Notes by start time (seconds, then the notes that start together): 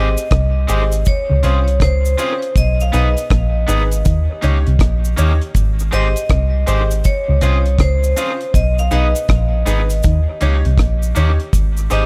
Already playing: G#1 C4 G4 G#4 D#5
0.17 closed hi-hat, cabasa
0.31 C2 C3, kick, cross-stick, closed hi-hat
0.67 G#1 G#2 G#3 C4 G4 G#4, closed hi-hat, cabasa
0.92 closed hi-hat, cabasa
1.05 C#5, kick, closed hi-hat, cabasa
1.30 C#2 C#3 F4 C5
1.43 C2 C3 C4 C#4 F4 G#4 C5, closed hi-hat, cabasa
1.68 closed hi-hat
1.80 C#2 C#3 C5, kick, cross-stick, closed hi-hat
2.05 cabasa
2.17 C4 C#4 F4 G#4 C5, closed hi-hat, cabasa
2.42 closed hi-hat
2.56 B1 B2 D#5, kick, closed hi-hat, cabasa
2.80 F5, cabasa
2.92 B1 B2 B3 D#4 G#4 B4 D#5, closed hi-hat, cabasa
3.17 closed hi-hat, cabasa
3.30 A#1 A#2, kick, cross-stick, closed hi-hat
3.67 G#1 G#2 B3 D#4 G#4 B4, closed hi-hat, cabasa
3.91 closed hi-hat, cabasa
4.05 D#2 D#3, kick, closed hi-hat, cabasa
4.29 G4 C#5
4.41 C#2 C#3 A#3 C#4 D#4 G4 C#5, closed hi-hat, cabasa
4.67 C2 C3, closed hi-hat
4.79 A#1 A#2, kick, cross-stick, closed hi-hat
5.05 cabasa
5.16 D#2 D#3 A#3 C#4 D#4 G4 C#5, closed hi-hat, cabasa
5.41 closed hi-hat
5.55 G#1 G#2, kick, closed hi-hat, cabasa
5.79 cabasa
5.91 G#1 G#2 G#3 C4 G4 G#4 C5 D#5, closed hi-hat, cabasa
6.16 closed hi-hat, cabasa
6.29 C2 C3, kick, cross-stick, closed hi-hat
6.66 G#1 G#2 G#3 C4 G4 G#4 C5, closed hi-hat, cabasa
6.91 closed hi-hat, cabasa
7.04 C#5, kick, closed hi-hat, cabasa
7.28 C#2 C#3 F4 C5
7.41 C2 C3 C4 C#4 F4 G#4 C5, closed hi-hat, cabasa
7.66 closed hi-hat
7.79 C#2 C#3 C5, kick, cross-stick, closed hi-hat
8.04 cabasa
8.16 C4 C#4 F4 G#4 C5, closed hi-hat, cabasa
8.41 closed hi-hat
8.54 B1 B2 D#5, kick, closed hi-hat, cabasa
8.78 F5, cabasa
8.91 B1 B2 B3 D#4 G#4 B4 D#5, closed hi-hat, cabasa
9.15 closed hi-hat, cabasa
9.29 A#1 A#2, kick, cross-stick, closed hi-hat
9.66 G#1 G#2 B3 D#4 G#4 B4, closed hi-hat, cabasa
9.90 closed hi-hat, cabasa
10.03 D#2 D#3, kick, closed hi-hat, cabasa
10.28 G4 C#5
10.41 C#2 C#3 A#3 C#4 D#4 G4 C#5, closed hi-hat, cabasa
10.65 C2 C3, closed hi-hat
10.78 A#1 A#2, kick, cross-stick, closed hi-hat
11.03 cabasa
11.15 D#2 D#3 A#3 C#4 D#4 G4 C#5, closed hi-hat, cabasa
11.40 closed hi-hat
11.53 G#1 G#2, kick, closed hi-hat, cabasa
11.77 cabasa
11.90 G#1 G#2 C4 D#4 G4 G#4 C5 D#5, closed hi-hat, cabasa